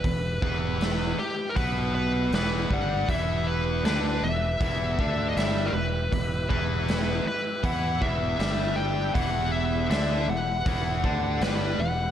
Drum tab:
HH |o-o-o-o-|o-o-o-o-|o-o-o-o-|o-o-o-o-|
SD |--o---o-|--o---o-|--o---o-|--o---o-|
BD |oo--o--o|o---oo--|oo--oo--|o---oo--|